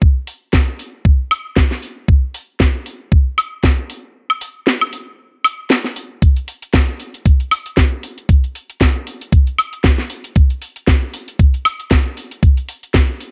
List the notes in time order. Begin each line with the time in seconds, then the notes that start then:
0.02 kick
0.27 open hi-hat
0.53 kick, snare
0.79 open hi-hat
1.05 kick
1.31 open hi-hat, high woodblock
1.56 kick, snare
1.71 snare
1.82 open hi-hat
2.08 kick
2.34 open hi-hat
2.60 kick, snare
2.86 open hi-hat
3.12 kick
3.38 open hi-hat, high woodblock
3.64 kick, snare
3.90 open hi-hat
4.30 high woodblock
4.41 open hi-hat
4.67 snare
4.81 high woodblock
4.93 open hi-hat
5.45 open hi-hat, high woodblock
5.70 snare
5.84 snare
5.96 open hi-hat
6.22 kick, closed hi-hat
6.37 closed hi-hat
6.48 open hi-hat
6.62 closed hi-hat
6.74 kick, snare, closed hi-hat
7.00 open hi-hat
7.14 closed hi-hat
7.25 kick, closed hi-hat
7.40 closed hi-hat
7.51 open hi-hat, high woodblock
7.66 closed hi-hat
7.77 kick, snare, closed hi-hat
8.03 open hi-hat
8.18 closed hi-hat
8.29 kick, closed hi-hat
8.44 closed hi-hat
8.55 open hi-hat
8.70 closed hi-hat
8.81 kick, snare, closed hi-hat
9.07 open hi-hat
9.21 closed hi-hat
9.32 kick, closed hi-hat
9.47 closed hi-hat
9.58 open hi-hat, high woodblock
9.73 closed hi-hat
9.84 kick, snare, closed hi-hat
9.98 snare
10.10 open hi-hat
10.24 closed hi-hat
10.36 kick, closed hi-hat
10.50 closed hi-hat
10.62 open hi-hat
10.76 closed hi-hat
10.87 kick, snare, closed hi-hat
11.14 open hi-hat
11.28 closed hi-hat
11.39 kick, closed hi-hat
11.54 closed hi-hat
11.65 open hi-hat, high woodblock
11.80 closed hi-hat
11.91 kick, snare, closed hi-hat
12.17 open hi-hat
12.31 closed hi-hat
12.43 kick, closed hi-hat
12.57 closed hi-hat
12.69 open hi-hat
12.83 closed hi-hat
12.94 kick, snare, closed hi-hat
13.20 open hi-hat